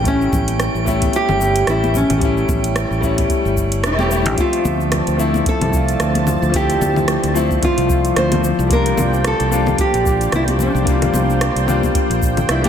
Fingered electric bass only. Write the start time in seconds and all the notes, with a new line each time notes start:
Already playing: A1
0.32 A1
0.74 A1
1.29 G1
1.67 A1
2.10 A1
2.49 A1
2.91 A1
3.45 G1
3.84 E1
4.26 A1
4.65 D2
5.07 D2
5.61 C2
6.00 D2
6.42 D2
6.81 D2
7.23 D2
7.78 C2
8.16 D2
8.59 C2
8.98 C2
9.40 C2
9.94 A#1
10.32 C2
10.75 C2
11.14 C2
11.56 C2
12.10 A#1
12.49 C2